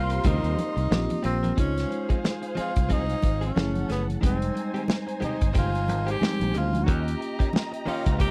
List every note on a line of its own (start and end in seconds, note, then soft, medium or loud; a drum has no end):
0.00 0.18 C2 medium
0.00 1.20 G3 medium
0.00 0.91 A#3 medium
0.00 0.91 C4 medium
0.00 0.29 F4 medium
0.00 0.92 F4 medium
0.00 1.20 F4 medium
0.00 0.92 G4 medium
0.00 1.20 A#4 loud
0.00 1.20 C5 medium
0.00 1.20 C6 loud
0.10 muted clean electric guitar stroke soft
0.10 closed hi-hat medium
0.24 0.40 D2 loud
0.24 0.56 G3 medium
0.24 0.56 C4 medium
0.24 1.25 D#4 medium
0.24 0.57 F4 medium
0.24 0.57 A#4 medium
0.24 kick medium
0.24 closed hi-hat medium
0.24 low conga medium
0.44 0.55 D#2 medium
0.44 closed hi-hat soft
0.59 closed hi-hat medium
0.59 muted conga medium
0.76 0.88 C2 medium
0.76 muted clean electric guitar stroke soft
0.76 closed hi-hat soft
0.91 1.07 A#1 loud
0.91 1.48 A#3 medium
0.91 1.48 C4 medium
0.91 1.48 F4 medium
0.91 1.48 G4 medium
0.91 muted clean electric guitar stroke soft
0.91 snare loud
0.91 high conga medium
1.10 muted clean electric guitar stroke soft
1.10 closed hi-hat medium
1.10 high conga medium
1.23 1.51 A#1 medium
1.23 1.36 G3 medium
1.23 1.36 C4 medium
1.23 1.56 C4 medium
1.23 1.37 F4 medium
1.23 1.37 A#4 medium
1.23 closed hi-hat medium
1.43 1.53 G3 medium
1.43 1.53 C4 medium
1.43 1.52 F4 medium
1.43 1.52 A#4 medium
1.43 closed hi-hat soft
1.43 high conga medium
1.55 1.84 C#2 loud
1.55 1.72 F3 medium
1.55 2.68 G#3 medium
1.55 1.73 C4 medium
1.55 1.73 D#4 medium
1.55 2.69 D#4 medium
1.55 2.69 F4 medium
1.55 1.73 G#4 medium
1.55 3.53 G#4 medium
1.55 3.52 C5 medium
1.55 2.69 C5 medium
1.55 3.52 F5 medium
1.55 kick loud
1.55 closed hi-hat medium
1.60 2.21 C#4 loud
1.78 snare soft
1.78 closed hi-hat medium
1.89 muted clean electric guitar stroke soft
1.89 closed hi-hat medium
1.89 muted conga soft
2.09 2.19 F3 soft
2.09 2.19 C4 soft
2.09 2.19 D#4 soft
2.09 2.18 G#4 soft
2.09 kick medium
2.09 closed hi-hat soft
2.23 muted clean electric guitar stroke soft
2.23 snare medium
2.23 high conga medium
2.42 muted clean electric guitar stroke soft
2.42 closed hi-hat soft
2.55 2.72 F3 medium
2.55 2.73 C4 medium
2.55 2.73 D#4 medium
2.55 2.73 G#4 medium
2.55 muted fingered electric bass stroke soft
2.55 closed hi-hat medium
2.55 muted conga soft
2.59 2.94 F4 medium
2.76 3.14 C2 medium
2.76 kick medium
2.76 closed hi-hat medium
2.89 3.05 F3 medium
2.89 3.06 C4 medium
2.89 3.06 D#4 medium
2.89 3.44 D#4 loud
2.89 3.06 G#4 medium
2.89 kick medium
2.89 closed hi-hat medium
2.89 low conga medium
3.09 closed hi-hat soft
3.22 3.50 G#1 medium
3.22 muted clean electric guitar stroke soft
3.22 kick medium
3.22 closed hi-hat medium
3.22 muted conga medium
3.41 3.52 F3 soft
3.41 3.51 C4 soft
3.41 3.51 D#4 medium
3.41 3.51 G#4 medium
3.41 closed hi-hat soft
3.46 3.88 C#4 medium
3.55 3.83 F#1 loud
3.55 3.71 E3 medium
3.55 3.72 A3 medium
3.55 4.13 A3 medium
3.55 4.21 C#4 medium
3.55 3.72 C#4 medium
3.55 4.13 C#4 medium
3.55 4.13 E4 medium
3.55 3.72 G#4 medium
3.55 4.14 G#4 medium
3.55 4.21 A4 medium
3.55 4.22 F#5 medium
3.55 snare loud
3.55 high conga medium
3.75 closed hi-hat soft
3.75 high conga medium
3.89 4.16 F#1 medium
3.89 4.01 E3 soft
3.89 4.02 A3 medium
3.89 4.06 B3 medium
3.89 4.02 C#4 medium
3.89 4.02 G#4 soft
3.89 snare soft
3.89 closed hi-hat medium
4.07 muted clean electric guitar stroke soft
4.07 closed hi-hat soft
4.07 high conga soft
4.21 4.49 F1 loud
4.21 4.38 D#3 medium
4.21 5.35 G3 medium
4.21 4.38 G#3 medium
4.21 5.34 G#3 medium
4.21 4.38 C4 medium
4.21 5.34 C4 medium
4.21 6.84 D#4 medium
4.21 5.34 D#4 medium
4.21 4.39 G4 medium
4.21 6.84 C5 medium
4.21 6.84 G#5 medium
4.21 kick loud
4.21 closed hi-hat medium
4.25 4.86 C4 medium
4.42 closed hi-hat medium
4.54 muted clean electric guitar stroke soft
4.54 closed hi-hat medium
4.54 muted conga soft
4.74 4.84 D#3 soft
4.74 4.84 G#3 soft
4.74 4.84 C4 medium
4.74 4.83 G4 medium
4.74 closed hi-hat soft
4.87 muted clean electric guitar stroke soft
4.87 snare loud
4.87 high conga medium
5.07 muted clean electric guitar stroke soft
5.07 closed hi-hat medium
5.20 5.37 D#3 medium
5.20 5.37 G#3 medium
5.20 5.38 C4 medium
5.20 5.54 D#4 medium
5.20 5.38 G4 medium
5.20 muted fingered electric bass stroke soft
5.20 closed hi-hat medium
5.20 muted conga soft
5.20 low conga medium
5.41 5.89 G1 medium
5.41 kick medium
5.41 closed hi-hat medium
5.53 5.70 D#3 medium
5.53 5.70 G#3 medium
5.53 5.71 C4 medium
5.53 5.71 G4 loud
5.53 kick medium
5.53 closed hi-hat medium
5.53 low conga medium
5.58 6.13 F4 loud
5.75 closed hi-hat soft
5.87 6.15 G#1 medium
5.87 muted clean electric guitar stroke soft
5.87 closed hi-hat medium
5.87 muted conga medium
6.07 6.17 D#3 soft
6.07 6.17 G#3 soft
6.07 6.17 C4 soft
6.07 6.16 G4 medium
6.07 closed hi-hat soft
6.11 6.60 G4 loud
6.21 6.37 D#3 medium
6.21 6.78 G3 medium
6.21 6.78 G#3 medium
6.21 6.37 G#3 medium
6.21 6.78 C4 medium
6.21 6.38 C4 medium
6.21 6.78 D#4 medium
6.21 6.38 G4 medium
6.21 snare loud
6.21 high conga medium
6.40 6.52 A#1 medium
6.40 muted clean electric guitar stroke soft
6.40 closed hi-hat medium
6.40 high conga medium
6.54 6.88 D2 medium
6.54 6.67 D#3 medium
6.54 6.67 G#3 medium
6.54 6.67 C4 soft
6.54 6.68 G4 medium
6.54 closed hi-hat medium
6.58 6.85 F4 loud
6.73 muted clean electric guitar stroke soft
6.73 closed hi-hat medium
6.73 high conga medium
6.83 7.03 D#3 medium
6.83 7.03 A#3 medium
6.83 7.98 A#3 medium
6.83 7.03 C#4 medium
6.83 6.93 F#4 medium
6.83 8.31 G4 medium
6.83 8.31 A#5 medium
6.87 7.14 D#2 loud
6.87 7.04 D#3 medium
6.87 7.04 C#4 medium
6.87 7.99 C#4 medium
6.87 7.99 F4 medium
6.87 7.04 G4 medium
6.87 7.99 G4 medium
6.87 8.31 D#5 medium
6.87 kick loud
6.87 closed hi-hat medium
6.92 7.56 G4 medium
7.08 closed hi-hat medium
7.20 muted clean electric guitar stroke soft
7.20 closed hi-hat medium
7.39 7.49 D#3 soft
7.39 7.49 A#3 medium
7.39 7.49 C#4 medium
7.39 7.48 G4 medium
7.39 kick medium
7.39 closed hi-hat soft
7.53 muted clean electric guitar stroke soft
7.53 snare loud
7.53 high conga medium
7.72 muted clean electric guitar stroke soft
7.72 closed hi-hat medium
7.86 8.02 D#3 medium
7.86 8.31 D#3 medium
7.86 8.02 A#3 medium
7.86 8.31 C#4 medium
7.86 8.03 C#4 medium
7.86 8.18 F4 medium
7.86 8.31 G4 medium
7.86 8.03 G4 medium
7.86 muted fingered electric bass stroke soft
7.86 open hi-hat medium
7.86 muted conga soft
8.06 8.31 C#2 medium
8.06 muted clean electric guitar stroke soft
8.06 kick loud
8.06 closed hi-hat medium
8.19 8.31 D#3 medium
8.19 8.31 A#3 medium
8.19 8.31 C#4 medium
8.19 8.31 G4 medium
8.19 8.31 G4 loud
8.19 kick medium
8.19 closed hi-hat medium
8.19 low conga medium